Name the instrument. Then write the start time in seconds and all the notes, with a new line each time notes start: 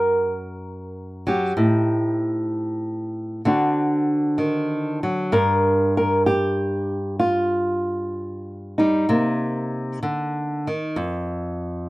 nylon-string guitar
Already playing: F#2 A#4
1.27 F#3 G4
1.57 A2 C4 D#4
3.45 D3 C4 D4 F#4
4.38 D#3
5.03 F#3
5.32 G2 A#4
5.97 A#4
6.26 G4
7.19 F4
8.78 G3 D#4
9.09 C3 A#3
10.03 D3
10.67 D#3
10.96 F2